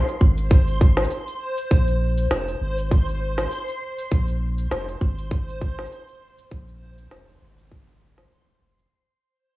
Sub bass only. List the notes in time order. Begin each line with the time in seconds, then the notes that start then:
0.21 G#1
1.72 A#1
2.30 F1
2.60 G#1
4.12 A#1
4.71 F1
5.02 G#1
6.51 A#1
7.11 F1
7.41 G#1
8.61 F1